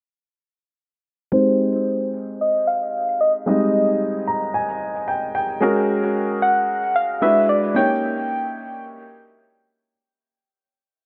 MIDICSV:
0, 0, Header, 1, 3, 480
1, 0, Start_track
1, 0, Key_signature, -4, "major"
1, 0, Tempo, 535714
1, 1190, Time_signature, 4, 2, 24, 8
1, 9909, End_track
2, 0, Start_track
2, 0, Title_t, "Soft synth lead"
2, 0, Program_c, 0, 80
2, 1194, Note_on_c, 0, 72, 115
2, 1876, Note_off_c, 0, 72, 0
2, 2161, Note_on_c, 0, 75, 104
2, 2396, Note_on_c, 0, 77, 112
2, 2410, Note_off_c, 0, 75, 0
2, 2868, Note_off_c, 0, 77, 0
2, 2873, Note_on_c, 0, 75, 92
2, 2981, Note_off_c, 0, 75, 0
2, 3113, Note_on_c, 0, 75, 97
2, 3796, Note_off_c, 0, 75, 0
2, 5755, Note_on_c, 0, 78, 101
2, 6233, Note_on_c, 0, 77, 94
2, 6247, Note_off_c, 0, 78, 0
2, 6472, Note_on_c, 0, 76, 100
2, 6485, Note_off_c, 0, 77, 0
2, 6713, Note_on_c, 0, 74, 88
2, 6726, Note_off_c, 0, 76, 0
2, 6951, Note_off_c, 0, 74, 0
2, 6955, Note_on_c, 0, 79, 120
2, 8357, Note_off_c, 0, 79, 0
2, 9909, End_track
3, 0, Start_track
3, 0, Title_t, "Grand piano"
3, 0, Program_c, 1, 0
3, 1181, Note_on_c, 1, 56, 60
3, 1187, Note_on_c, 1, 60, 57
3, 1191, Note_on_c, 1, 63, 59
3, 1197, Note_on_c, 1, 67, 57
3, 1201, Note_on_c, 1, 72, 65
3, 1347, Control_c, 1, 64, 127
3, 3070, Note_off_c, 1, 56, 0
3, 3072, Note_off_c, 1, 60, 0
3, 3075, Note_off_c, 1, 63, 0
3, 3077, Note_off_c, 1, 67, 0
3, 3080, Note_off_c, 1, 72, 0
3, 3101, Note_on_c, 1, 56, 65
3, 3106, Note_on_c, 1, 60, 58
3, 3111, Note_on_c, 1, 63, 59
3, 3115, Note_on_c, 1, 55, 56
3, 3121, Note_on_c, 1, 75, 69
3, 3830, Note_on_c, 1, 82, 69
3, 4053, Note_off_c, 1, 82, 0
3, 4070, Note_on_c, 1, 80, 74
3, 4517, Note_off_c, 1, 80, 0
3, 4550, Note_on_c, 1, 79, 68
3, 4773, Note_off_c, 1, 79, 0
3, 4792, Note_on_c, 1, 79, 68
3, 4990, Note_off_c, 1, 56, 0
3, 4992, Note_off_c, 1, 60, 0
3, 4995, Note_off_c, 1, 63, 0
3, 4997, Note_off_c, 1, 55, 0
3, 5000, Note_off_c, 1, 75, 0
3, 5014, Note_off_c, 1, 79, 0
3, 5022, Note_on_c, 1, 56, 75
3, 5027, Note_on_c, 1, 61, 71
3, 5033, Note_on_c, 1, 68, 71
3, 5038, Note_on_c, 1, 66, 73
3, 5042, Control_c, 1, 64, 0
3, 5044, Note_on_c, 1, 70, 83
3, 5196, Control_c, 1, 64, 127
3, 6437, Note_off_c, 1, 56, 0
3, 6440, Note_off_c, 1, 61, 0
3, 6443, Note_off_c, 1, 68, 0
3, 6445, Note_off_c, 1, 66, 0
3, 6448, Note_off_c, 1, 70, 0
3, 6464, Note_on_c, 1, 56, 61
3, 6466, Note_on_c, 1, 62, 56
3, 6468, Note_on_c, 1, 64, 57
3, 6471, Note_on_c, 1, 66, 55
3, 6474, Note_on_c, 1, 71, 66
3, 6480, Control_c, 1, 64, 0
3, 6617, Control_c, 1, 64, 127
3, 6939, Note_on_c, 1, 58, 65
3, 6944, Note_on_c, 1, 61, 57
3, 6947, Note_off_c, 1, 56, 0
3, 6948, Note_off_c, 1, 62, 0
3, 6948, Note_on_c, 1, 63, 59
3, 6949, Note_off_c, 1, 64, 0
3, 6951, Note_off_c, 1, 66, 0
3, 6952, Note_off_c, 1, 71, 0
3, 6953, Note_on_c, 1, 67, 59
3, 6958, Note_on_c, 1, 73, 71
3, 6963, Control_c, 1, 64, 0
3, 7097, Control_c, 1, 64, 127
3, 8829, Note_off_c, 1, 58, 0
3, 8831, Note_off_c, 1, 61, 0
3, 8833, Note_off_c, 1, 63, 0
3, 8836, Note_off_c, 1, 67, 0
3, 8838, Note_off_c, 1, 73, 0
3, 8883, Control_c, 1, 64, 0
3, 9909, End_track
0, 0, End_of_file